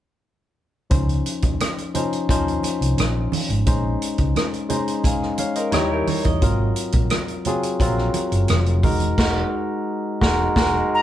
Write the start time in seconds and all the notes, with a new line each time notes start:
0.90 C#2 F3 C#4 D#4 C5, kick, closed hi-hat, muted conga
1.09 closed hi-hat
1.26 closed hi-hat
1.42 D#2, kick, closed hi-hat
1.60 cross-stick, closed hi-hat, high conga
1.78 closed hi-hat
1.94 F3 C#4 D#4 C5, closed hi-hat, low conga
2.13 closed hi-hat
2.29 D#2 F3 C#4 D#4 C5, kick, closed hi-hat, muted conga
2.48 closed hi-hat
2.63 closed hi-hat, muted conga
2.81 C2, closed hi-hat
2.98 A#1, cross-stick, closed hi-hat, high conga
3.32 open hi-hat, high conga
3.49 G#1, closed hi-hat, high conga
3.66 A#1 G#3 C#4 D#4 C5, kick, closed hi-hat
4.02 closed hi-hat
4.18 C#2, kick, closed hi-hat
4.36 cross-stick, closed hi-hat, high conga
4.54 closed hi-hat
4.69 G#3 C#4 D#4 C5, closed hi-hat, low conga
4.88 closed hi-hat
5.04 F5 G#5, kick, closed hi-hat, muted conga
5.23 cross-stick
5.38 C#5 F5, closed hi-hat, muted conga
5.55 A#4 C5 D#5, closed hi-hat
5.71 D#2 G3 D#4 E4 G4 C#5, cross-stick, closed hi-hat, high conga
5.90 G4 A#4
6.07 A#4 C#5, open hi-hat, high conga
6.24 E2 D#5, kick, closed hi-hat, high conga
6.41 G#1 F#3 C4 F4 A#4, kick, closed hi-hat, muted conga
6.76 closed hi-hat
6.92 A#1, kick, closed hi-hat
7.10 cross-stick, closed hi-hat, high conga
7.28 closed hi-hat
7.45 F#3 C4 F4 G#4, closed hi-hat, low conga
7.63 closed hi-hat
7.80 A#1 F#3 C4 F4 A#4, kick, closed hi-hat, muted conga
7.98 cross-stick
8.14 closed hi-hat, muted conga
8.32 F#1, closed hi-hat
8.48 F1, cross-stick, closed hi-hat, high conga
8.66 closed hi-hat
8.83 E1 G#3 D#4 F#4 A#4, kick, open hi-hat, high conga
9.00 closed hi-hat, high conga
9.18 E1 G#3 D#4 F#4 A#4, kick, snare, crash
10.21 E1 G#3 D#4 F#4 A#4, kick, snare
10.56 E1 G#3 D#4 F#4 A#4, kick, snare
10.95 A#5